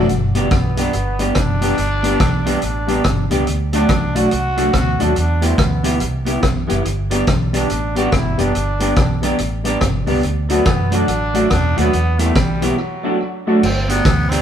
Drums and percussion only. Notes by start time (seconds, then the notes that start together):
0.09 closed hi-hat
0.35 closed hi-hat
0.51 kick, cross-stick, closed hi-hat
0.77 closed hi-hat
0.93 closed hi-hat
1.19 closed hi-hat
1.35 kick, cross-stick, closed hi-hat
1.62 closed hi-hat
1.78 closed hi-hat
2.04 closed hi-hat
2.20 kick, cross-stick, closed hi-hat
2.46 closed hi-hat
2.62 closed hi-hat
2.88 closed hi-hat
3.04 kick, cross-stick, closed hi-hat
3.31 closed hi-hat
3.47 closed hi-hat
3.73 closed hi-hat
3.89 kick, cross-stick, closed hi-hat
4.16 closed hi-hat
4.31 closed hi-hat
4.57 closed hi-hat
4.73 kick, cross-stick, closed hi-hat
5.00 closed hi-hat
5.16 closed hi-hat
5.42 closed hi-hat
5.58 kick, cross-stick, closed hi-hat
5.84 closed hi-hat
6.00 closed hi-hat
6.26 closed hi-hat
6.43 kick, cross-stick, closed hi-hat
6.70 closed hi-hat
6.85 closed hi-hat
7.11 closed hi-hat
7.27 kick, cross-stick, closed hi-hat
7.54 closed hi-hat
7.70 closed hi-hat
7.96 closed hi-hat
8.12 kick, cross-stick, closed hi-hat
8.39 closed hi-hat
8.55 closed hi-hat
8.80 closed hi-hat
8.96 kick, cross-stick, closed hi-hat
9.23 closed hi-hat
9.38 closed hi-hat
9.65 closed hi-hat
9.81 kick, cross-stick, closed hi-hat
10.07 open hi-hat
10.23 closed hi-hat
10.50 closed hi-hat
10.65 kick, cross-stick, closed hi-hat
10.92 closed hi-hat
11.08 closed hi-hat
11.34 closed hi-hat
11.50 kick, cross-stick, closed hi-hat
11.78 closed hi-hat
11.93 closed hi-hat
12.19 closed hi-hat
12.35 kick, cross-stick, closed hi-hat
12.62 closed hi-hat
13.63 crash
13.90 closed hi-hat
14.05 kick, cross-stick, closed hi-hat
14.32 closed hi-hat